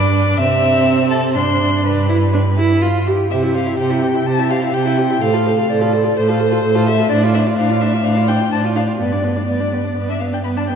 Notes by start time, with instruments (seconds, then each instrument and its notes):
Already playing: cello G2, viola D4, violin D5 D6
0.38 cello C3, viola C4, violin E5 E6
1.10 violin A4 A5
1.34 cello G2, viola D4, violin C5 C6
1.84 viola D4, violin B4 B5
2.09 viola E4
2.33 viola D4
2.57 viola E4
2.82 viola F4
3.06 viola G4
3.31 cello C3, viola G4, violin C5 E5
3.43 viola E4, violin E5
3.54 viola G4, violin C5 F5
3.65 viola E4, violin E5
3.78 cello C3, viola G4, violin C5 G5
3.90 viola E4, violin E5
4.02 viola G4, violin C5
4.14 viola E4, violin E5
4.25 cello C3, viola G4, violin C5 A5
4.38 viola E4, violin E5
4.50 viola G4, violin C5 F5
4.61 viola E4, violin E5
4.73 cello C3, viola G4, violin C5 G5
4.85 viola E4, violin E5
4.97 viola G4, violin C5
5.10 viola E4, violin E5
5.22 cello A2, viola A4, violin C5 F5
5.33 viola F4, violin A4
5.45 viola A4, violin C5
5.57 viola F4, violin A4
5.70 cello A2, viola A4, violin C5 D5
5.81 viola F4, violin A4
5.92 viola A4, violin C5
6.04 viola F4, violin A4
6.16 cello A2, viola A4, violin C5
6.28 viola F4, violin A4
6.39 viola A4, violin C5
6.52 viola F4, violin A4
6.63 cello A2, viola A4, violin C5
6.75 viola F4, violin A4
6.86 viola A4, violin C5 E5
6.98 viola F4, violin A4
7.09 cello A2, viola D4, violin C5 D5
7.22 viola F4, violin D5
7.34 viola D4, violin C5 E5
7.45 viola F4, violin D5
7.57 cello A2, viola D4, violin C5 F5
7.68 viola F4, violin D5
7.80 viola D4, violin C5 E5
7.91 viola F4, violin D5
8.03 cello A2, viola D4, violin C5 F5
8.15 viola F4, violin D5
8.28 viola D4, violin C5 G5
8.40 viola F4, violin D5
8.52 cello A2, viola D4, violin C5 A5
8.63 viola F4, violin D5
8.75 viola D4, violin C5 F5
8.86 viola F4, violin D5
9.00 cello G2, viola B3, violin B4 D5
9.12 viola D4, violin D5
9.24 viola B3, violin B4
9.36 viola D4, violin D5
9.47 cello G2, viola B3, violin B4
9.60 viola D4, violin D5
9.72 viola B3, violin B4
9.84 viola D4, violin D5
9.97 cello G2, viola B3, violin B4
10.09 viola D4, violin D5 E5
10.20 viola B3, violin B4 F5
10.32 viola D4, violin D5 G5
10.44 cello G2, viola B3, violin B4 B5
10.56 viola D4, violin D5 A5
10.68 viola B3, violin B4 G5